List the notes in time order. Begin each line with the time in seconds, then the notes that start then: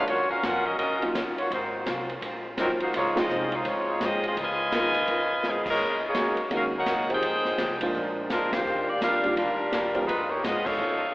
0.07 D#2 D#3 F#3 A#3 C#4 F4 F#4 C#5, kick, ride
0.11 F4
0.30 C#4 F#4 A#4 F5, muted upright bass stroke
0.43 F2 D#3 F#3 C#4 F4 A#4 F#5, kick, snare, hi-hat pedal, ride
0.66 C#4 F#4 A#4 D#5
0.78 F#2 D#3 F#3 C#4 F#4 A#4 D#5, kick, ride
0.83 F4
1.02 F#3 A#3 C#4 D#4 F4, ride
1.14 D#2 D#3 F#3 C#4 F4, kick, snare, hi-hat pedal, ride
1.38 A#3 F4 F#4 C#5, muted upright bass stroke, ride
1.50 G#1 G#2 F#3 A#3 C4 D#4 F4 F#4 C5, kick, ride
1.86 C2 G#2 F#3 C4 F4, kick, snare, hi-hat pedal, ride
2.09 ride
2.21 A#1 G#2 F#3 C4, kick, ride
2.25 F4
2.57 G#1 G#2 F#3 A#3 C4 D#4 F4 A#4, kick, snare, hi-hat pedal, ride
2.80 A#3 D#4 F#4 C5, ride
2.93 C#2 C#3 F3 G#3 C4 D#4 F4 C#5, kick, ride
2.97 D#4
3.15 G#3 C4 D#4 F4 G#4 D#5, snare, ride
3.27 C2 C#3 F3 C4 D#4, hi-hat pedal
3.52 D#4 F4 C5, ride
3.56 G#3
3.64 G#1 C#3 F3 C4 D#4 F4 C#5, kick, ride
3.68 G#3
4.00 G#2 C#3 F3 C4 D#4, kick, snare, hi-hat pedal, ride
4.05 C4 F4 G#4 D#5
4.23 G#4, ride
4.28 C4 F4 D#5
4.35 C#2 C#3 B3 F4 A#4, kick, ride
4.43 F4 B4 D#5 G#5
4.71 D#2 C#3 G#3 A#3 B3 D#4 F4 A#4, kick, snare, hi-hat pedal, ride
4.94 ride
5.06 F2 C#3 B3 F4 A#4, kick, ride
5.43 G#2 C#3 B3 F4 A#4, snare, hi-hat pedal
5.49 F3 B3 D#4 G#4
5.66 kick, crash
5.70 G#3 C#4 D#4 A#4
5.78 F#2 F#3 A#3 D#4 G#4
6.08 A#3 D#4 G#4 C#5
6.14 F2 F#3 G#3 A#3 C#4 D#4 F#4 G#4, kick, snare, hi-hat pedal, ride
6.37 muted upright bass stroke, ride
6.50 D#2 F#3 G#3 A#3 C#4 D#4 F#4 G#4, kick, ride
6.55 C#4 F#4 A#4 F5
6.78 D#4 A#4 C#5 F#5
6.86 C#2 F#3 A#3 D#4 G#4, kick, snare, hi-hat pedal, ride
7.09 F3 G#3 C4 D#4 G4, ride
7.13 D#4 G#4 C5 G5
7.22 F2 F3 G#3 D#4, kick, ride
7.27 G4
7.45 snare
7.58 D#2 F3 G#3 D#4 G4, kick, snare, hi-hat pedal, ride
7.69 C2
7.81 G#1 F3 G#3 A#3 D4 F4, ride
7.94 A#1 A#2 F3 G#3, kick
7.98 D4
8.29 D2 A#2 F3 G#3 D4 F4 A#4, kick, snare, hi-hat pedal, ride
8.52 A#3 F4 G4 C5, snare, ride
8.65 D#2 D#3 G3 D4
8.69 F4
8.89 A#3 F4 G4 D5
9.01 F2 D#3 G3 D4 F4 G4 A#4 F5, kick, snare, hi-hat pedal, ride
9.23 D#3 G3 A#3 D4 F4, ride
9.36 D2 D#3 G3 D4 F4 A#4, kick, ride
9.72 D#2 D#3 G3 D4 F4, kick, snare, hi-hat pedal, ride
9.95 F3 G#3 B3 D#4 G4, ride
10.07 F2 F3 G#3 B3 D#4 F4 B4, kick, ride
10.11 G#4
10.29 A#3 D#4 G4 C#5
10.43 G#2 F3 B3 D#4 F4 G#4 D#5, kick, snare, hi-hat pedal, ride
10.66 D#4 A4 C#5 F5, kick, crash
10.79 F2 F3 C#4 D#4 A4